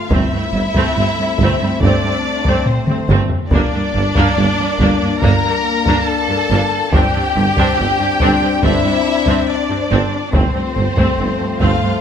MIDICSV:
0, 0, Header, 1, 9, 480
1, 0, Start_track
1, 0, Tempo, 852273
1, 63, Time_signature, 4, 2, 24, 8
1, 6763, End_track
2, 0, Start_track
2, 0, Title_t, "Violin section"
2, 0, Program_c, 0, 48
2, 0, Note_on_c, 0, 77, 72
2, 60, Note_on_c, 0, 76, 84
2, 67, Note_off_c, 0, 77, 0
2, 1022, Note_off_c, 0, 76, 0
2, 1026, Note_on_c, 0, 74, 87
2, 1495, Note_off_c, 0, 74, 0
2, 1501, Note_on_c, 0, 72, 71
2, 1742, Note_off_c, 0, 72, 0
2, 1967, Note_on_c, 0, 74, 84
2, 2913, Note_off_c, 0, 74, 0
2, 2941, Note_on_c, 0, 82, 86
2, 3409, Note_on_c, 0, 81, 86
2, 3422, Note_off_c, 0, 82, 0
2, 3896, Note_off_c, 0, 81, 0
2, 3901, Note_on_c, 0, 79, 96
2, 4843, Note_off_c, 0, 79, 0
2, 4867, Note_on_c, 0, 76, 98
2, 5346, Note_off_c, 0, 76, 0
2, 5346, Note_on_c, 0, 74, 74
2, 5819, Note_on_c, 0, 72, 77
2, 5826, Note_off_c, 0, 74, 0
2, 6528, Note_off_c, 0, 72, 0
2, 6535, Note_on_c, 0, 77, 73
2, 6763, Note_off_c, 0, 77, 0
2, 6763, End_track
3, 0, Start_track
3, 0, Title_t, "Violin section"
3, 0, Program_c, 1, 48
3, 0, Note_on_c, 1, 65, 62
3, 63, Note_on_c, 1, 64, 74
3, 66, Note_off_c, 1, 65, 0
3, 1023, Note_off_c, 1, 64, 0
3, 1026, Note_on_c, 1, 62, 70
3, 1495, Note_off_c, 1, 62, 0
3, 1501, Note_on_c, 1, 60, 55
3, 1742, Note_off_c, 1, 60, 0
3, 1971, Note_on_c, 1, 62, 86
3, 2915, Note_off_c, 1, 62, 0
3, 2948, Note_on_c, 1, 70, 80
3, 3417, Note_on_c, 1, 69, 76
3, 3426, Note_off_c, 1, 70, 0
3, 3901, Note_off_c, 1, 69, 0
3, 3904, Note_on_c, 1, 67, 75
3, 4863, Note_on_c, 1, 64, 78
3, 4864, Note_off_c, 1, 67, 0
3, 5344, Note_off_c, 1, 64, 0
3, 5348, Note_on_c, 1, 62, 54
3, 5817, Note_off_c, 1, 62, 0
3, 5826, Note_on_c, 1, 60, 69
3, 6543, Note_on_c, 1, 65, 60
3, 6546, Note_off_c, 1, 60, 0
3, 6763, Note_off_c, 1, 65, 0
3, 6763, End_track
4, 0, Start_track
4, 0, Title_t, "Viola section"
4, 0, Program_c, 2, 48
4, 63, Note_on_c, 2, 60, 66
4, 64, Note_on_c, 2, 57, 66
4, 175, Note_off_c, 2, 57, 0
4, 175, Note_off_c, 2, 60, 0
4, 191, Note_on_c, 2, 57, 49
4, 195, Note_on_c, 2, 60, 45
4, 236, Note_off_c, 2, 57, 0
4, 240, Note_off_c, 2, 60, 0
4, 313, Note_on_c, 2, 57, 38
4, 313, Note_on_c, 2, 60, 42
4, 358, Note_off_c, 2, 57, 0
4, 358, Note_off_c, 2, 60, 0
4, 431, Note_on_c, 2, 57, 78
4, 432, Note_on_c, 2, 60, 75
4, 539, Note_off_c, 2, 57, 0
4, 540, Note_off_c, 2, 60, 0
4, 561, Note_on_c, 2, 57, 48
4, 564, Note_on_c, 2, 60, 47
4, 605, Note_off_c, 2, 57, 0
4, 608, Note_off_c, 2, 60, 0
4, 682, Note_on_c, 2, 60, 46
4, 684, Note_on_c, 2, 57, 52
4, 726, Note_off_c, 2, 60, 0
4, 728, Note_off_c, 2, 57, 0
4, 801, Note_on_c, 2, 60, 75
4, 802, Note_on_c, 2, 57, 70
4, 904, Note_off_c, 2, 60, 0
4, 905, Note_off_c, 2, 57, 0
4, 917, Note_on_c, 2, 57, 47
4, 919, Note_on_c, 2, 60, 49
4, 963, Note_off_c, 2, 57, 0
4, 964, Note_off_c, 2, 60, 0
4, 1030, Note_on_c, 2, 57, 63
4, 1030, Note_on_c, 2, 60, 69
4, 1138, Note_off_c, 2, 57, 0
4, 1139, Note_off_c, 2, 60, 0
4, 1156, Note_on_c, 2, 57, 51
4, 1158, Note_on_c, 2, 60, 59
4, 1201, Note_off_c, 2, 57, 0
4, 1203, Note_off_c, 2, 60, 0
4, 1392, Note_on_c, 2, 60, 70
4, 1395, Note_on_c, 2, 57, 59
4, 1500, Note_off_c, 2, 60, 0
4, 1501, Note_off_c, 2, 57, 0
4, 1630, Note_on_c, 2, 57, 50
4, 1630, Note_on_c, 2, 60, 58
4, 1675, Note_off_c, 2, 60, 0
4, 1676, Note_off_c, 2, 57, 0
4, 1746, Note_on_c, 2, 57, 66
4, 1746, Note_on_c, 2, 60, 70
4, 1856, Note_off_c, 2, 60, 0
4, 1857, Note_off_c, 2, 57, 0
4, 1988, Note_on_c, 2, 62, 67
4, 1990, Note_on_c, 2, 58, 70
4, 2097, Note_off_c, 2, 62, 0
4, 2098, Note_off_c, 2, 58, 0
4, 2106, Note_on_c, 2, 62, 41
4, 2107, Note_on_c, 2, 58, 45
4, 2151, Note_off_c, 2, 62, 0
4, 2152, Note_off_c, 2, 58, 0
4, 2219, Note_on_c, 2, 62, 44
4, 2222, Note_on_c, 2, 58, 46
4, 2264, Note_off_c, 2, 62, 0
4, 2267, Note_off_c, 2, 58, 0
4, 2343, Note_on_c, 2, 58, 80
4, 2344, Note_on_c, 2, 62, 74
4, 2455, Note_off_c, 2, 58, 0
4, 2455, Note_off_c, 2, 62, 0
4, 2462, Note_on_c, 2, 62, 52
4, 2464, Note_on_c, 2, 58, 50
4, 2507, Note_off_c, 2, 62, 0
4, 2509, Note_off_c, 2, 58, 0
4, 2583, Note_on_c, 2, 58, 54
4, 2584, Note_on_c, 2, 62, 52
4, 2628, Note_off_c, 2, 58, 0
4, 2629, Note_off_c, 2, 62, 0
4, 2705, Note_on_c, 2, 62, 76
4, 2707, Note_on_c, 2, 58, 73
4, 2816, Note_off_c, 2, 62, 0
4, 2817, Note_off_c, 2, 58, 0
4, 2825, Note_on_c, 2, 58, 50
4, 2826, Note_on_c, 2, 62, 60
4, 2870, Note_off_c, 2, 58, 0
4, 2871, Note_off_c, 2, 62, 0
4, 2937, Note_on_c, 2, 62, 64
4, 2941, Note_on_c, 2, 58, 68
4, 3052, Note_off_c, 2, 62, 0
4, 3054, Note_off_c, 2, 58, 0
4, 3067, Note_on_c, 2, 58, 53
4, 3069, Note_on_c, 2, 62, 50
4, 3112, Note_off_c, 2, 58, 0
4, 3114, Note_off_c, 2, 62, 0
4, 3305, Note_on_c, 2, 58, 61
4, 3309, Note_on_c, 2, 62, 73
4, 3416, Note_off_c, 2, 58, 0
4, 3418, Note_off_c, 2, 62, 0
4, 3546, Note_on_c, 2, 62, 57
4, 3547, Note_on_c, 2, 58, 56
4, 3591, Note_off_c, 2, 62, 0
4, 3592, Note_off_c, 2, 58, 0
4, 3663, Note_on_c, 2, 58, 68
4, 3665, Note_on_c, 2, 62, 57
4, 3775, Note_off_c, 2, 58, 0
4, 3776, Note_off_c, 2, 62, 0
4, 3904, Note_on_c, 2, 60, 63
4, 3905, Note_on_c, 2, 62, 64
4, 4010, Note_off_c, 2, 60, 0
4, 4015, Note_off_c, 2, 62, 0
4, 4017, Note_on_c, 2, 60, 52
4, 4022, Note_on_c, 2, 62, 43
4, 4062, Note_off_c, 2, 60, 0
4, 4067, Note_off_c, 2, 62, 0
4, 4141, Note_on_c, 2, 62, 44
4, 4142, Note_on_c, 2, 60, 46
4, 4186, Note_off_c, 2, 62, 0
4, 4187, Note_off_c, 2, 60, 0
4, 4268, Note_on_c, 2, 60, 69
4, 4269, Note_on_c, 2, 62, 77
4, 4370, Note_off_c, 2, 62, 0
4, 4372, Note_off_c, 2, 60, 0
4, 4377, Note_on_c, 2, 62, 46
4, 4379, Note_on_c, 2, 60, 43
4, 4422, Note_off_c, 2, 62, 0
4, 4424, Note_off_c, 2, 60, 0
4, 4504, Note_on_c, 2, 62, 52
4, 4508, Note_on_c, 2, 60, 47
4, 4549, Note_off_c, 2, 62, 0
4, 4553, Note_off_c, 2, 60, 0
4, 4623, Note_on_c, 2, 62, 73
4, 4624, Note_on_c, 2, 60, 70
4, 4735, Note_off_c, 2, 60, 0
4, 4735, Note_off_c, 2, 62, 0
4, 4741, Note_on_c, 2, 60, 51
4, 4741, Note_on_c, 2, 62, 46
4, 4786, Note_off_c, 2, 60, 0
4, 4786, Note_off_c, 2, 62, 0
4, 4862, Note_on_c, 2, 62, 67
4, 4863, Note_on_c, 2, 60, 68
4, 4972, Note_off_c, 2, 62, 0
4, 4974, Note_off_c, 2, 60, 0
4, 4978, Note_on_c, 2, 62, 53
4, 4980, Note_on_c, 2, 60, 48
4, 5023, Note_off_c, 2, 62, 0
4, 5025, Note_off_c, 2, 60, 0
4, 5221, Note_on_c, 2, 60, 67
4, 5221, Note_on_c, 2, 62, 62
4, 5334, Note_off_c, 2, 60, 0
4, 5334, Note_off_c, 2, 62, 0
4, 5461, Note_on_c, 2, 60, 52
4, 5464, Note_on_c, 2, 62, 51
4, 5506, Note_off_c, 2, 60, 0
4, 5509, Note_off_c, 2, 62, 0
4, 5580, Note_on_c, 2, 62, 66
4, 5582, Note_on_c, 2, 60, 70
4, 5694, Note_off_c, 2, 62, 0
4, 5695, Note_off_c, 2, 60, 0
4, 5822, Note_on_c, 2, 57, 53
4, 5822, Note_on_c, 2, 60, 66
4, 5928, Note_off_c, 2, 57, 0
4, 5932, Note_off_c, 2, 60, 0
4, 5935, Note_on_c, 2, 57, 42
4, 5939, Note_on_c, 2, 60, 42
4, 5980, Note_off_c, 2, 57, 0
4, 5984, Note_off_c, 2, 60, 0
4, 6055, Note_on_c, 2, 57, 37
4, 6058, Note_on_c, 2, 60, 42
4, 6100, Note_off_c, 2, 57, 0
4, 6103, Note_off_c, 2, 60, 0
4, 6176, Note_on_c, 2, 57, 65
4, 6179, Note_on_c, 2, 60, 69
4, 6292, Note_off_c, 2, 57, 0
4, 6294, Note_off_c, 2, 60, 0
4, 6300, Note_on_c, 2, 60, 39
4, 6302, Note_on_c, 2, 57, 40
4, 6345, Note_off_c, 2, 60, 0
4, 6347, Note_off_c, 2, 57, 0
4, 6415, Note_on_c, 2, 57, 40
4, 6418, Note_on_c, 2, 60, 44
4, 6460, Note_off_c, 2, 57, 0
4, 6463, Note_off_c, 2, 60, 0
4, 6535, Note_on_c, 2, 60, 68
4, 6538, Note_on_c, 2, 57, 61
4, 6650, Note_off_c, 2, 57, 0
4, 6652, Note_off_c, 2, 60, 0
4, 6657, Note_on_c, 2, 57, 52
4, 6660, Note_on_c, 2, 60, 42
4, 6702, Note_off_c, 2, 57, 0
4, 6706, Note_off_c, 2, 60, 0
4, 6763, End_track
5, 0, Start_track
5, 0, Title_t, "French horn section"
5, 0, Program_c, 3, 60
5, 63, Note_on_c, 3, 60, 67
5, 70, Note_on_c, 3, 57, 59
5, 1896, Note_off_c, 3, 57, 0
5, 1896, Note_off_c, 3, 60, 0
5, 1992, Note_on_c, 3, 62, 67
5, 1997, Note_on_c, 3, 58, 73
5, 3885, Note_off_c, 3, 62, 0
5, 3888, Note_off_c, 3, 58, 0
5, 3900, Note_on_c, 3, 60, 71
5, 3900, Note_on_c, 3, 62, 74
5, 5731, Note_off_c, 3, 60, 0
5, 5731, Note_off_c, 3, 62, 0
5, 5827, Note_on_c, 3, 57, 61
5, 5830, Note_on_c, 3, 53, 71
5, 6763, Note_off_c, 3, 53, 0
5, 6763, Note_off_c, 3, 57, 0
5, 6763, End_track
6, 0, Start_track
6, 0, Title_t, "Cello section"
6, 0, Program_c, 4, 48
6, 58, Note_on_c, 4, 43, 64
6, 103, Note_off_c, 4, 43, 0
6, 176, Note_on_c, 4, 43, 49
6, 221, Note_off_c, 4, 43, 0
6, 300, Note_on_c, 4, 43, 46
6, 345, Note_off_c, 4, 43, 0
6, 421, Note_on_c, 4, 43, 64
6, 466, Note_off_c, 4, 43, 0
6, 542, Note_on_c, 4, 43, 50
6, 587, Note_off_c, 4, 43, 0
6, 661, Note_on_c, 4, 43, 49
6, 706, Note_off_c, 4, 43, 0
6, 787, Note_on_c, 4, 43, 63
6, 832, Note_off_c, 4, 43, 0
6, 907, Note_on_c, 4, 43, 49
6, 952, Note_off_c, 4, 43, 0
6, 1029, Note_on_c, 4, 43, 69
6, 1074, Note_off_c, 4, 43, 0
6, 1144, Note_on_c, 4, 43, 44
6, 1189, Note_off_c, 4, 43, 0
6, 1383, Note_on_c, 4, 43, 60
6, 1428, Note_off_c, 4, 43, 0
6, 1620, Note_on_c, 4, 43, 51
6, 1665, Note_off_c, 4, 43, 0
6, 1745, Note_on_c, 4, 43, 72
6, 1790, Note_off_c, 4, 43, 0
6, 1980, Note_on_c, 4, 43, 61
6, 2025, Note_off_c, 4, 43, 0
6, 2109, Note_on_c, 4, 43, 51
6, 2154, Note_off_c, 4, 43, 0
6, 2231, Note_on_c, 4, 43, 50
6, 2276, Note_off_c, 4, 43, 0
6, 2343, Note_on_c, 4, 43, 80
6, 2388, Note_off_c, 4, 43, 0
6, 2459, Note_on_c, 4, 43, 53
6, 2504, Note_off_c, 4, 43, 0
6, 2584, Note_on_c, 4, 43, 48
6, 2629, Note_off_c, 4, 43, 0
6, 2707, Note_on_c, 4, 43, 60
6, 2752, Note_off_c, 4, 43, 0
6, 2830, Note_on_c, 4, 43, 56
6, 2875, Note_off_c, 4, 43, 0
6, 2946, Note_on_c, 4, 43, 78
6, 2991, Note_off_c, 4, 43, 0
6, 3063, Note_on_c, 4, 43, 50
6, 3108, Note_off_c, 4, 43, 0
6, 3305, Note_on_c, 4, 43, 70
6, 3350, Note_off_c, 4, 43, 0
6, 3541, Note_on_c, 4, 43, 51
6, 3586, Note_off_c, 4, 43, 0
6, 3664, Note_on_c, 4, 43, 75
6, 3709, Note_off_c, 4, 43, 0
6, 3903, Note_on_c, 4, 43, 66
6, 3948, Note_off_c, 4, 43, 0
6, 4026, Note_on_c, 4, 43, 56
6, 4071, Note_off_c, 4, 43, 0
6, 4148, Note_on_c, 4, 43, 49
6, 4193, Note_off_c, 4, 43, 0
6, 4268, Note_on_c, 4, 43, 75
6, 4313, Note_off_c, 4, 43, 0
6, 4386, Note_on_c, 4, 43, 50
6, 4431, Note_off_c, 4, 43, 0
6, 4497, Note_on_c, 4, 43, 51
6, 4542, Note_off_c, 4, 43, 0
6, 4621, Note_on_c, 4, 43, 65
6, 4666, Note_off_c, 4, 43, 0
6, 4740, Note_on_c, 4, 43, 50
6, 4785, Note_off_c, 4, 43, 0
6, 4855, Note_on_c, 4, 43, 69
6, 4900, Note_off_c, 4, 43, 0
6, 4977, Note_on_c, 4, 43, 46
6, 5022, Note_off_c, 4, 43, 0
6, 5217, Note_on_c, 4, 43, 65
6, 5262, Note_off_c, 4, 43, 0
6, 5458, Note_on_c, 4, 43, 46
6, 5503, Note_off_c, 4, 43, 0
6, 5579, Note_on_c, 4, 43, 69
6, 5624, Note_off_c, 4, 43, 0
6, 5814, Note_on_c, 4, 43, 65
6, 5859, Note_off_c, 4, 43, 0
6, 5936, Note_on_c, 4, 43, 46
6, 5981, Note_off_c, 4, 43, 0
6, 6060, Note_on_c, 4, 43, 41
6, 6105, Note_off_c, 4, 43, 0
6, 6175, Note_on_c, 4, 43, 69
6, 6220, Note_off_c, 4, 43, 0
6, 6296, Note_on_c, 4, 43, 52
6, 6341, Note_off_c, 4, 43, 0
6, 6417, Note_on_c, 4, 43, 43
6, 6462, Note_off_c, 4, 43, 0
6, 6529, Note_on_c, 4, 43, 57
6, 6574, Note_off_c, 4, 43, 0
6, 6655, Note_on_c, 4, 43, 49
6, 6700, Note_off_c, 4, 43, 0
6, 6763, End_track
7, 0, Start_track
7, 0, Title_t, "Double bass section"
7, 0, Program_c, 5, 48
7, 59, Note_on_c, 5, 31, 71
7, 104, Note_off_c, 5, 31, 0
7, 302, Note_on_c, 5, 31, 52
7, 347, Note_off_c, 5, 31, 0
7, 546, Note_on_c, 5, 31, 48
7, 591, Note_off_c, 5, 31, 0
7, 784, Note_on_c, 5, 31, 75
7, 829, Note_off_c, 5, 31, 0
7, 1020, Note_on_c, 5, 31, 69
7, 1066, Note_off_c, 5, 31, 0
7, 1744, Note_on_c, 5, 31, 70
7, 1789, Note_off_c, 5, 31, 0
7, 1983, Note_on_c, 5, 31, 75
7, 2028, Note_off_c, 5, 31, 0
7, 2221, Note_on_c, 5, 31, 54
7, 2266, Note_off_c, 5, 31, 0
7, 2468, Note_on_c, 5, 31, 50
7, 2513, Note_off_c, 5, 31, 0
7, 2699, Note_on_c, 5, 31, 74
7, 2744, Note_off_c, 5, 31, 0
7, 2945, Note_on_c, 5, 31, 64
7, 2990, Note_off_c, 5, 31, 0
7, 3667, Note_on_c, 5, 31, 72
7, 3712, Note_off_c, 5, 31, 0
7, 3907, Note_on_c, 5, 31, 71
7, 3952, Note_off_c, 5, 31, 0
7, 4150, Note_on_c, 5, 31, 51
7, 4195, Note_off_c, 5, 31, 0
7, 4388, Note_on_c, 5, 31, 48
7, 4433, Note_off_c, 5, 31, 0
7, 4630, Note_on_c, 5, 31, 70
7, 4675, Note_off_c, 5, 31, 0
7, 4867, Note_on_c, 5, 31, 62
7, 4912, Note_off_c, 5, 31, 0
7, 5590, Note_on_c, 5, 31, 72
7, 5635, Note_off_c, 5, 31, 0
7, 5820, Note_on_c, 5, 31, 66
7, 5865, Note_off_c, 5, 31, 0
7, 6064, Note_on_c, 5, 31, 47
7, 6109, Note_off_c, 5, 31, 0
7, 6300, Note_on_c, 5, 31, 42
7, 6345, Note_off_c, 5, 31, 0
7, 6540, Note_on_c, 5, 31, 65
7, 6586, Note_off_c, 5, 31, 0
7, 6763, End_track
8, 0, Start_track
8, 0, Title_t, "Tuba"
8, 0, Program_c, 6, 58
8, 59, Note_on_c, 6, 31, 60
8, 107, Note_off_c, 6, 31, 0
8, 294, Note_on_c, 6, 31, 46
8, 344, Note_off_c, 6, 31, 0
8, 536, Note_on_c, 6, 31, 47
8, 586, Note_off_c, 6, 31, 0
8, 776, Note_on_c, 6, 31, 74
8, 826, Note_off_c, 6, 31, 0
8, 1014, Note_on_c, 6, 31, 75
8, 1064, Note_off_c, 6, 31, 0
8, 1735, Note_on_c, 6, 31, 71
8, 1784, Note_off_c, 6, 31, 0
8, 1976, Note_on_c, 6, 31, 72
8, 2025, Note_off_c, 6, 31, 0
8, 2218, Note_on_c, 6, 31, 53
8, 2267, Note_off_c, 6, 31, 0
8, 2458, Note_on_c, 6, 31, 51
8, 2507, Note_off_c, 6, 31, 0
8, 2693, Note_on_c, 6, 31, 66
8, 2743, Note_off_c, 6, 31, 0
8, 2940, Note_on_c, 6, 31, 71
8, 2989, Note_off_c, 6, 31, 0
8, 3664, Note_on_c, 6, 31, 68
8, 3712, Note_off_c, 6, 31, 0
8, 3898, Note_on_c, 6, 31, 66
8, 3947, Note_off_c, 6, 31, 0
8, 4143, Note_on_c, 6, 31, 53
8, 4191, Note_off_c, 6, 31, 0
8, 4380, Note_on_c, 6, 31, 53
8, 4429, Note_off_c, 6, 31, 0
8, 4629, Note_on_c, 6, 31, 67
8, 4676, Note_off_c, 6, 31, 0
8, 4866, Note_on_c, 6, 31, 70
8, 4914, Note_off_c, 6, 31, 0
8, 5582, Note_on_c, 6, 31, 71
8, 5631, Note_off_c, 6, 31, 0
8, 5826, Note_on_c, 6, 31, 64
8, 5874, Note_off_c, 6, 31, 0
8, 6059, Note_on_c, 6, 31, 47
8, 6108, Note_off_c, 6, 31, 0
8, 6310, Note_on_c, 6, 31, 43
8, 6357, Note_off_c, 6, 31, 0
8, 6550, Note_on_c, 6, 31, 63
8, 6597, Note_off_c, 6, 31, 0
8, 6763, End_track
9, 0, Start_track
9, 0, Title_t, "Taiko and cinematic ensemble drums"
9, 60, Note_on_c, 9, 41, 85
9, 116, Note_off_c, 9, 41, 0
9, 419, Note_on_c, 9, 41, 75
9, 476, Note_off_c, 9, 41, 0
9, 778, Note_on_c, 9, 41, 75
9, 834, Note_off_c, 9, 41, 0
9, 1018, Note_on_c, 9, 41, 71
9, 1074, Note_off_c, 9, 41, 0
9, 1377, Note_on_c, 9, 41, 76
9, 1434, Note_off_c, 9, 41, 0
9, 1497, Note_on_c, 9, 45, 80
9, 1553, Note_off_c, 9, 45, 0
9, 1617, Note_on_c, 9, 47, 77
9, 1673, Note_off_c, 9, 47, 0
9, 1740, Note_on_c, 9, 47, 80
9, 1797, Note_off_c, 9, 47, 0
9, 1855, Note_on_c, 9, 43, 80
9, 1912, Note_off_c, 9, 43, 0
9, 1977, Note_on_c, 9, 41, 82
9, 2033, Note_off_c, 9, 41, 0
9, 2338, Note_on_c, 9, 41, 79
9, 2394, Note_off_c, 9, 41, 0
9, 2703, Note_on_c, 9, 41, 69
9, 2760, Note_off_c, 9, 41, 0
9, 2938, Note_on_c, 9, 41, 69
9, 2995, Note_off_c, 9, 41, 0
9, 3298, Note_on_c, 9, 41, 73
9, 3354, Note_off_c, 9, 41, 0
9, 3900, Note_on_c, 9, 41, 87
9, 3956, Note_off_c, 9, 41, 0
9, 4262, Note_on_c, 9, 41, 75
9, 4318, Note_off_c, 9, 41, 0
9, 4617, Note_on_c, 9, 41, 72
9, 4674, Note_off_c, 9, 41, 0
9, 4858, Note_on_c, 9, 41, 72
9, 4915, Note_off_c, 9, 41, 0
9, 5213, Note_on_c, 9, 41, 65
9, 5269, Note_off_c, 9, 41, 0
9, 5819, Note_on_c, 9, 41, 92
9, 5875, Note_off_c, 9, 41, 0
9, 6180, Note_on_c, 9, 41, 81
9, 6236, Note_off_c, 9, 41, 0
9, 6536, Note_on_c, 9, 41, 72
9, 6592, Note_off_c, 9, 41, 0
9, 6763, End_track
0, 0, End_of_file